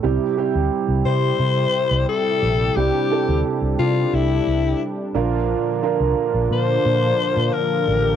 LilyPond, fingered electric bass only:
\new Staff \with { instrumentName = "Fingered electric bass" } { \clef bass \time 4/4 \key c \mixolydian \tempo 4 = 88 c,16 r8 d,16 r16 c,16 c8 c8 r16 c,16 r8 bes,,8 | c,16 r8 d,16 r16 c,16 c8 c,8 c,8 r8 bes,,8~ | bes,,16 r8 c,16 r16 bes,,16 bes,8 bes,8 r16 bes,16 r8 a,,8 | }